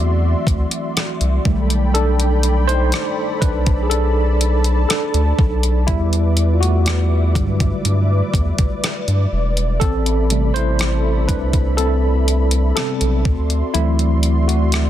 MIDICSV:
0, 0, Header, 1, 5, 480
1, 0, Start_track
1, 0, Tempo, 983607
1, 948, Time_signature, 4, 2, 24, 8
1, 7270, End_track
2, 0, Start_track
2, 0, Title_t, "Analog synth pad"
2, 0, Program_c, 0, 89
2, 0, Note_on_c, 0, 66, 82
2, 0, Note_on_c, 0, 74, 75
2, 0, Note_on_c, 0, 76, 74
2, 0, Note_on_c, 0, 84, 91
2, 691, Note_off_c, 0, 66, 0
2, 691, Note_off_c, 0, 74, 0
2, 691, Note_off_c, 0, 76, 0
2, 691, Note_off_c, 0, 84, 0
2, 711, Note_on_c, 0, 74, 74
2, 712, Note_on_c, 0, 69, 83
2, 712, Note_on_c, 0, 79, 73
2, 712, Note_on_c, 0, 83, 88
2, 1660, Note_off_c, 0, 79, 0
2, 1669, Note_on_c, 0, 81, 71
2, 2850, Note_off_c, 0, 74, 0
2, 2850, Note_off_c, 0, 83, 0
2, 2851, Note_off_c, 0, 69, 0
2, 2857, Note_off_c, 0, 81, 0
2, 2867, Note_on_c, 0, 71, 78
2, 2868, Note_on_c, 0, 74, 76
2, 2868, Note_on_c, 0, 76, 77
2, 2869, Note_on_c, 0, 86, 92
2, 4769, Note_off_c, 0, 71, 0
2, 4769, Note_off_c, 0, 76, 0
2, 4769, Note_off_c, 0, 86, 0
2, 4787, Note_on_c, 0, 69, 83
2, 4787, Note_on_c, 0, 83, 91
2, 4788, Note_on_c, 0, 76, 74
2, 6449, Note_off_c, 0, 74, 0
2, 6451, Note_off_c, 0, 69, 0
2, 6451, Note_off_c, 0, 76, 0
2, 6451, Note_off_c, 0, 83, 0
2, 6468, Note_on_c, 0, 66, 78
2, 6468, Note_on_c, 0, 84, 92
2, 6469, Note_on_c, 0, 74, 73
2, 6469, Note_on_c, 0, 76, 77
2, 7270, Note_off_c, 0, 66, 0
2, 7270, Note_off_c, 0, 74, 0
2, 7270, Note_off_c, 0, 76, 0
2, 7270, Note_off_c, 0, 84, 0
2, 7270, End_track
3, 0, Start_track
3, 0, Title_t, "Tine electric piano"
3, 0, Program_c, 1, 4
3, 0, Control_c, 1, 64, 127
3, 0, Note_on_c, 1, 52, 52
3, 0, Note_on_c, 1, 54, 48
3, 0, Note_on_c, 1, 57, 57
3, 0, Note_on_c, 1, 60, 58
3, 0, Note_on_c, 1, 66, 76
3, 85, Note_off_c, 1, 66, 0
3, 92, Note_off_c, 1, 57, 0
3, 689, Note_off_c, 1, 52, 0
3, 690, Note_off_c, 1, 54, 0
3, 692, Note_off_c, 1, 60, 0
3, 708, Note_on_c, 1, 51, 53
3, 711, Note_on_c, 1, 55, 52
3, 714, Note_on_c, 1, 57, 60
3, 715, Control_c, 1, 64, 0
3, 800, Control_c, 1, 64, 127
3, 948, Note_on_c, 1, 69, 97
3, 955, Note_on_c, 1, 62, 80
3, 1027, Note_off_c, 1, 51, 0
3, 1029, Note_off_c, 1, 55, 0
3, 1030, Note_off_c, 1, 57, 0
3, 1292, Note_off_c, 1, 62, 0
3, 1305, Note_on_c, 1, 72, 98
3, 1315, Note_on_c, 1, 63, 73
3, 1319, Note_off_c, 1, 69, 0
3, 1652, Note_off_c, 1, 63, 0
3, 1664, Note_on_c, 1, 71, 85
3, 1673, Note_on_c, 1, 62, 71
3, 1678, Note_off_c, 1, 72, 0
3, 1857, Note_off_c, 1, 71, 0
3, 1862, Note_off_c, 1, 62, 0
3, 1868, Note_on_c, 1, 68, 63
3, 1902, Note_on_c, 1, 69, 97
3, 1905, Note_off_c, 1, 68, 0
3, 1912, Note_on_c, 1, 62, 77
3, 2371, Note_off_c, 1, 62, 0
3, 2379, Note_off_c, 1, 69, 0
3, 2385, Note_on_c, 1, 69, 86
3, 2395, Note_on_c, 1, 62, 63
3, 2852, Note_off_c, 1, 62, 0
3, 2864, Note_on_c, 1, 64, 94
3, 2874, Control_c, 1, 64, 0
3, 2874, Note_on_c, 1, 55, 69
3, 2881, Note_off_c, 1, 69, 0
3, 2949, Control_c, 1, 64, 127
3, 3178, Note_off_c, 1, 55, 0
3, 3189, Note_on_c, 1, 65, 51
3, 3202, Note_off_c, 1, 64, 0
3, 3223, Note_on_c, 1, 66, 73
3, 3226, Note_off_c, 1, 65, 0
3, 3233, Note_on_c, 1, 57, 58
3, 3587, Note_on_c, 1, 50, 52
3, 3591, Note_on_c, 1, 54, 47
3, 3594, Note_on_c, 1, 55, 56
3, 3926, Note_off_c, 1, 66, 0
3, 3931, Note_off_c, 1, 57, 0
3, 4768, Note_off_c, 1, 50, 0
3, 4770, Note_off_c, 1, 54, 0
3, 4772, Note_off_c, 1, 55, 0
3, 4781, Note_on_c, 1, 69, 106
3, 4793, Note_on_c, 1, 60, 79
3, 4795, Control_c, 1, 64, 0
3, 4891, Control_c, 1, 64, 127
3, 5028, Note_on_c, 1, 48, 52
3, 5031, Note_on_c, 1, 55, 50
3, 5034, Note_on_c, 1, 57, 56
3, 5131, Note_off_c, 1, 60, 0
3, 5144, Note_on_c, 1, 72, 97
3, 5154, Note_on_c, 1, 64, 73
3, 5156, Note_off_c, 1, 69, 0
3, 5492, Note_off_c, 1, 64, 0
3, 5504, Note_on_c, 1, 71, 85
3, 5515, Note_on_c, 1, 62, 69
3, 5517, Note_off_c, 1, 72, 0
3, 5735, Note_off_c, 1, 62, 0
3, 5745, Note_on_c, 1, 69, 97
3, 5753, Note_off_c, 1, 71, 0
3, 5755, Note_on_c, 1, 60, 72
3, 6207, Note_off_c, 1, 69, 0
3, 6212, Note_off_c, 1, 60, 0
3, 6223, Note_off_c, 1, 48, 0
3, 6225, Note_on_c, 1, 69, 84
3, 6226, Note_off_c, 1, 55, 0
3, 6229, Note_on_c, 1, 48, 44
3, 6232, Note_on_c, 1, 55, 40
3, 6232, Note_on_c, 1, 59, 49
3, 6235, Note_on_c, 1, 60, 67
3, 6449, Note_off_c, 1, 48, 0
3, 6451, Note_off_c, 1, 55, 0
3, 6451, Note_off_c, 1, 59, 0
3, 6452, Note_off_c, 1, 57, 0
3, 6475, Control_c, 1, 64, 0
3, 6557, Control_c, 1, 64, 127
3, 6692, Note_off_c, 1, 60, 0
3, 6704, Note_on_c, 1, 64, 94
3, 6706, Note_on_c, 1, 52, 56
3, 6709, Note_on_c, 1, 54, 51
3, 6712, Note_on_c, 1, 60, 61
3, 6713, Note_on_c, 1, 57, 69
3, 6721, Note_off_c, 1, 69, 0
3, 7051, Note_off_c, 1, 57, 0
3, 7065, Note_on_c, 1, 66, 76
3, 7074, Note_on_c, 1, 57, 61
3, 7077, Note_off_c, 1, 64, 0
3, 7270, Note_off_c, 1, 52, 0
3, 7270, Note_off_c, 1, 54, 0
3, 7270, Note_off_c, 1, 57, 0
3, 7270, Note_off_c, 1, 60, 0
3, 7270, Note_off_c, 1, 66, 0
3, 7270, End_track
4, 0, Start_track
4, 0, Title_t, "Analog synth bass"
4, 0, Program_c, 2, 38
4, 0, Note_on_c, 2, 40, 94
4, 171, Note_off_c, 2, 40, 0
4, 229, Note_on_c, 2, 38, 93
4, 319, Note_off_c, 2, 38, 0
4, 590, Note_on_c, 2, 36, 96
4, 680, Note_off_c, 2, 36, 0
4, 710, Note_on_c, 2, 35, 93
4, 1433, Note_off_c, 2, 35, 0
4, 1668, Note_on_c, 2, 35, 96
4, 2369, Note_off_c, 2, 35, 0
4, 2508, Note_on_c, 2, 38, 96
4, 2599, Note_off_c, 2, 38, 0
4, 2629, Note_on_c, 2, 35, 97
4, 2869, Note_on_c, 2, 40, 105
4, 2876, Note_off_c, 2, 35, 0
4, 3589, Note_on_c, 2, 43, 98
4, 3597, Note_off_c, 2, 40, 0
4, 3770, Note_off_c, 2, 43, 0
4, 3830, Note_on_c, 2, 43, 98
4, 4010, Note_off_c, 2, 43, 0
4, 4069, Note_on_c, 2, 40, 92
4, 4159, Note_off_c, 2, 40, 0
4, 4430, Note_on_c, 2, 43, 81
4, 4520, Note_off_c, 2, 43, 0
4, 4550, Note_on_c, 2, 28, 92
4, 4789, Note_on_c, 2, 33, 103
4, 4797, Note_off_c, 2, 28, 0
4, 5508, Note_on_c, 2, 36, 91
4, 5516, Note_off_c, 2, 33, 0
4, 6209, Note_off_c, 2, 36, 0
4, 6349, Note_on_c, 2, 35, 86
4, 6468, Note_on_c, 2, 38, 89
4, 6475, Note_off_c, 2, 35, 0
4, 6649, Note_off_c, 2, 38, 0
4, 6708, Note_on_c, 2, 38, 100
4, 7270, Note_off_c, 2, 38, 0
4, 7270, End_track
5, 0, Start_track
5, 0, Title_t, "Drums"
5, 228, Note_on_c, 9, 36, 83
5, 234, Note_on_c, 9, 42, 64
5, 277, Note_off_c, 9, 36, 0
5, 282, Note_off_c, 9, 42, 0
5, 348, Note_on_c, 9, 42, 51
5, 397, Note_off_c, 9, 42, 0
5, 472, Note_on_c, 9, 42, 76
5, 475, Note_on_c, 9, 37, 113
5, 521, Note_off_c, 9, 42, 0
5, 523, Note_off_c, 9, 37, 0
5, 590, Note_on_c, 9, 42, 48
5, 639, Note_off_c, 9, 42, 0
5, 709, Note_on_c, 9, 36, 92
5, 758, Note_off_c, 9, 36, 0
5, 830, Note_on_c, 9, 42, 47
5, 879, Note_off_c, 9, 42, 0
5, 951, Note_on_c, 9, 42, 63
5, 999, Note_off_c, 9, 42, 0
5, 1071, Note_on_c, 9, 42, 50
5, 1120, Note_off_c, 9, 42, 0
5, 1187, Note_on_c, 9, 42, 68
5, 1236, Note_off_c, 9, 42, 0
5, 1312, Note_on_c, 9, 42, 43
5, 1361, Note_off_c, 9, 42, 0
5, 1426, Note_on_c, 9, 42, 59
5, 1434, Note_on_c, 9, 37, 105
5, 1474, Note_off_c, 9, 42, 0
5, 1482, Note_off_c, 9, 37, 0
5, 1668, Note_on_c, 9, 36, 99
5, 1670, Note_on_c, 9, 42, 76
5, 1717, Note_off_c, 9, 36, 0
5, 1719, Note_off_c, 9, 42, 0
5, 1788, Note_on_c, 9, 42, 45
5, 1789, Note_on_c, 9, 36, 90
5, 1837, Note_off_c, 9, 42, 0
5, 1838, Note_off_c, 9, 36, 0
5, 1909, Note_on_c, 9, 42, 69
5, 1957, Note_off_c, 9, 42, 0
5, 2151, Note_on_c, 9, 42, 65
5, 2200, Note_off_c, 9, 42, 0
5, 2266, Note_on_c, 9, 42, 53
5, 2315, Note_off_c, 9, 42, 0
5, 2391, Note_on_c, 9, 42, 80
5, 2393, Note_on_c, 9, 37, 105
5, 2440, Note_off_c, 9, 42, 0
5, 2442, Note_off_c, 9, 37, 0
5, 2510, Note_on_c, 9, 42, 46
5, 2558, Note_off_c, 9, 42, 0
5, 2628, Note_on_c, 9, 36, 87
5, 2677, Note_off_c, 9, 36, 0
5, 2749, Note_on_c, 9, 42, 47
5, 2798, Note_off_c, 9, 42, 0
5, 2868, Note_on_c, 9, 42, 63
5, 2869, Note_on_c, 9, 36, 94
5, 2917, Note_off_c, 9, 36, 0
5, 2917, Note_off_c, 9, 42, 0
5, 2991, Note_on_c, 9, 42, 53
5, 3039, Note_off_c, 9, 42, 0
5, 3107, Note_on_c, 9, 42, 61
5, 3156, Note_off_c, 9, 42, 0
5, 3234, Note_on_c, 9, 42, 46
5, 3283, Note_off_c, 9, 42, 0
5, 3348, Note_on_c, 9, 42, 56
5, 3356, Note_on_c, 9, 37, 110
5, 3396, Note_off_c, 9, 42, 0
5, 3404, Note_off_c, 9, 37, 0
5, 3589, Note_on_c, 9, 36, 99
5, 3591, Note_on_c, 9, 42, 70
5, 3637, Note_off_c, 9, 36, 0
5, 3640, Note_off_c, 9, 42, 0
5, 3710, Note_on_c, 9, 36, 88
5, 3712, Note_on_c, 9, 42, 47
5, 3759, Note_off_c, 9, 36, 0
5, 3761, Note_off_c, 9, 42, 0
5, 3831, Note_on_c, 9, 42, 65
5, 3879, Note_off_c, 9, 42, 0
5, 4068, Note_on_c, 9, 36, 85
5, 4073, Note_on_c, 9, 42, 67
5, 4117, Note_off_c, 9, 36, 0
5, 4122, Note_off_c, 9, 42, 0
5, 4189, Note_on_c, 9, 42, 54
5, 4190, Note_on_c, 9, 36, 86
5, 4238, Note_off_c, 9, 42, 0
5, 4239, Note_off_c, 9, 36, 0
5, 4312, Note_on_c, 9, 42, 79
5, 4314, Note_on_c, 9, 37, 115
5, 4361, Note_off_c, 9, 42, 0
5, 4363, Note_off_c, 9, 37, 0
5, 4431, Note_on_c, 9, 42, 45
5, 4479, Note_off_c, 9, 42, 0
5, 4670, Note_on_c, 9, 42, 45
5, 4719, Note_off_c, 9, 42, 0
5, 4789, Note_on_c, 9, 36, 105
5, 4790, Note_on_c, 9, 42, 67
5, 4838, Note_off_c, 9, 36, 0
5, 4839, Note_off_c, 9, 42, 0
5, 4911, Note_on_c, 9, 42, 51
5, 4959, Note_off_c, 9, 42, 0
5, 5028, Note_on_c, 9, 42, 62
5, 5076, Note_off_c, 9, 42, 0
5, 5152, Note_on_c, 9, 42, 46
5, 5201, Note_off_c, 9, 42, 0
5, 5266, Note_on_c, 9, 42, 61
5, 5274, Note_on_c, 9, 37, 105
5, 5315, Note_off_c, 9, 42, 0
5, 5323, Note_off_c, 9, 37, 0
5, 5508, Note_on_c, 9, 36, 98
5, 5510, Note_on_c, 9, 42, 73
5, 5557, Note_off_c, 9, 36, 0
5, 5559, Note_off_c, 9, 42, 0
5, 5628, Note_on_c, 9, 42, 48
5, 5629, Note_on_c, 9, 36, 85
5, 5677, Note_off_c, 9, 36, 0
5, 5677, Note_off_c, 9, 42, 0
5, 5749, Note_on_c, 9, 42, 65
5, 5798, Note_off_c, 9, 42, 0
5, 5992, Note_on_c, 9, 42, 64
5, 6041, Note_off_c, 9, 42, 0
5, 6106, Note_on_c, 9, 42, 54
5, 6155, Note_off_c, 9, 42, 0
5, 6230, Note_on_c, 9, 42, 77
5, 6232, Note_on_c, 9, 37, 111
5, 6279, Note_off_c, 9, 42, 0
5, 6281, Note_off_c, 9, 37, 0
5, 6348, Note_on_c, 9, 42, 48
5, 6397, Note_off_c, 9, 42, 0
5, 6467, Note_on_c, 9, 36, 101
5, 6516, Note_off_c, 9, 36, 0
5, 6588, Note_on_c, 9, 42, 47
5, 6637, Note_off_c, 9, 42, 0
5, 6707, Note_on_c, 9, 42, 66
5, 6756, Note_off_c, 9, 42, 0
5, 6828, Note_on_c, 9, 42, 47
5, 6877, Note_off_c, 9, 42, 0
5, 6944, Note_on_c, 9, 42, 62
5, 6993, Note_off_c, 9, 42, 0
5, 7070, Note_on_c, 9, 42, 48
5, 7119, Note_off_c, 9, 42, 0
5, 7184, Note_on_c, 9, 42, 62
5, 7192, Note_on_c, 9, 37, 100
5, 7233, Note_off_c, 9, 42, 0
5, 7241, Note_off_c, 9, 37, 0
5, 7270, End_track
0, 0, End_of_file